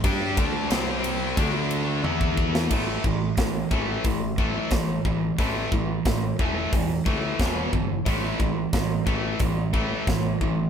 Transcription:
<<
  \new Staff \with { instrumentName = "Distorted electric guitar" } { \time 4/4 \key a \minor \tempo 4 = 90 <g d' g'>8 <d a d'>8 <c g c'>4 <d a d'>4 <e b e'>4 | r1 | r1 | r1 | }
  \new Staff \with { instrumentName = "Distorted electric guitar" } { \clef bass \time 4/4 \key a \minor <g d' g'>8 <d a d'>8 <c g c'>4 <d a d'>4 <e b e'>4 | <a, e a>8 <a, e>8 <a, e>8 <a, e a>8 <a, e>8 <a, e a>8 <a, e>8 <a, e>8 | <a, e a>8 <a, e>8 <a, e>8 <a, e a>8 <a, e>8 <a, e a>8 <e, b, e>8 <e, b,>8 | <a, e a>8 <a, e>8 <a, e>8 <a, e a>8 <a, e>8 <a, e a>8 <a, e>8 <a, e>8 | }
  \new Staff \with { instrumentName = "Distorted electric guitar" } { \clef bass \time 4/4 \key a \minor <g d' g'>8 <d a d'>8 <c g c'>4 <d a d'>4 <e b e'>4 | <a, e a>8 <a, e>8 <a, e>8 <a, e a>8 <a, e>8 <a, e a>8 <a, e>8 <a, e>8 | <a, e a>8 <a, e>8 <a, e>8 <a, e a>8 <a, e>8 <a, e a>8 <e, b, e>8 <e, b,>8 | <a, e a>8 <a, e>8 <a, e>8 <a, e a>8 <a, e>8 <a, e a>8 <a, e>8 <a, e>8 | }
  \new Staff \with { instrumentName = "Picked electric bass" } { \clef bass \time 4/4 \key a \minor g,8 d,8 c,4 d,4 e,4 | a,,8 a,,8 a,,8 a,,8 a,,4 a,,8 a,,8 | a,,8 a,,8 a,,8 e,,8 e,,8 d,8 e,,8 g,,8 | a,,8 a,,8 a,,8 a,,8 a,,4 a,,8 a,,8 | }
  \new DrumStaff \with { instrumentName = "Drums" } \drummode { \time 4/4 <bd cymr>8 <bd cymr>8 <cymr sn>8 cymr8 <bd cymr>8 cymr8 tommh16 bd16 bd16 sn16 | <cymc bd>8 bd8 <hho bd sn>8 bd8 <hho bd>8 bd8 <hho bd sn>8 bd8 | <hho bd>8 bd8 <hho bd sn>8 bd8 <hho bd>8 bd8 <hho bd sn>8 bd8 | <hho bd>8 bd8 <hho bd sn>8 bd8 <hho bd>8 bd8 <hho bd sn>8 bd8 | }
>>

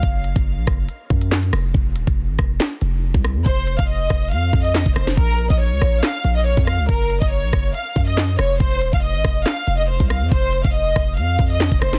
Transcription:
<<
  \new Staff \with { instrumentName = "Violin section" } { \time 4/4 \key ges \lydian \tempo 4 = 140 r1 | r1 | c''8. f''16 ees''4 f''8. ees''8. c''8 | bes'8. ees''16 des''4 f''8. ees''16 des''8 f''8 |
bes'8. ees''16 des''4 f''8. ees''8. des''8 | c''8. f''16 ees''4 f''8. ees''16 c''8 f''8 | c''8. f''16 ees''4 f''8. ees''8. c''8 | }
  \new Staff \with { instrumentName = "808-style bass" } { \clef bass \time 4/4 \key ges \lydian ges,,8. ges,,8 bes,,16 ges,,8 r8 ges,4 f,,8 | f,,8 ees,,16 f,,8 aes,,16 f,,8 r8 f,,8. c,8 f,16 | f,,8. f,,8. f,,8 f,8 f,8. f,,16 f,,8 | bes,,8. bes,,8 des,16 bes,,8 r8 bes,,8. f,8 des,16 |
ges,,8. ges,,8 bes,,16 ges,,8 r8 ges,4 f,,8 | f,,8 ees,,16 f,,8 aes,,16 f,,8 r8 f,,8. c,8 f,16 | f,,8. f,,8. f,,8 f,8 f,8. f,,16 f,,8 | }
  \new DrumStaff \with { instrumentName = "Drums" } \drummode { \time 4/4 <hh bd>8 hh16 <hh bd>16 r8 <hh bd ss>8 hh8 bd16 hh16 <hc sn>16 hh16 <hho ss>8 | <hh bd>8 hh16 <hh bd>16 r8 <hh bd ss>8 <hc hh sn>8 hh8 r16 bd16 <hh ss>8 | <hh bd>8 hh16 <hh bd>16 r8 <hh bd ss>8 hh8 bd16 hh16 <hc sn>16 <hh bd>16 ss16 sn16 | <hh bd>8 hh16 <hh bd>16 r8 <hh bd ss>8 <hc hh sn>8 hh8 r16 bd16 <hh ss>8 |
<hh bd>8 hh16 <hh bd>16 r8 <hh bd ss>8 hh8 bd16 hh16 <hc sn>16 hh16 <hho ss>8 | <hh bd>8 hh16 <hh bd>16 r8 <hh bd ss>8 <hc hh sn>8 hh8 r16 bd16 <hh ss>8 | <hh bd>8 hh16 <hh bd>16 r8 <hh bd ss>8 hh8 bd16 hh16 <hc sn>16 <hh bd>16 ss16 sn16 | }
>>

